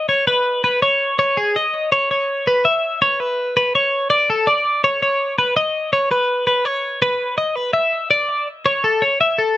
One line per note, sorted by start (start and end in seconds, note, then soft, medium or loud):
0.09 0.27 C#5 medium
0.27 0.63 B4 medium
0.64 0.82 B4 medium
0.82 1.18 C#5 medium
1.19 1.37 C#5 loud
1.37 1.55 G#4 medium
1.56 1.92 D#5 medium
1.92 2.10 C#5 medium
2.11 2.47 C#5 medium
2.47 2.65 B4 medium
2.65 3.01 E5 loud
3.02 3.20 C#5 medium
3.20 3.56 B4 medium
3.57 3.74 B4 medium
3.75 4.10 C#5 medium
4.10 4.28 D5 medium
4.30 4.47 A4 medium
4.47 4.83 D5 medium
4.84 5.01 C#5 medium
5.03 5.38 C#5 medium
5.39 5.56 B4 medium
5.57 5.92 D#5 loud
5.93 6.11 C#5 medium
6.11 6.46 B4 medium
6.47 6.65 B4 medium
6.65 7.02 C#5 medium
7.02 7.37 B4 medium
7.38 7.56 D#5 medium
7.56 7.73 B4 medium
7.73 8.10 E5 medium
8.11 8.47 D5 medium
8.66 8.84 C#5 medium
8.84 9.02 A4 medium
9.02 9.20 C#5 medium
9.21 9.39 E5 medium
9.38 9.57 A4 medium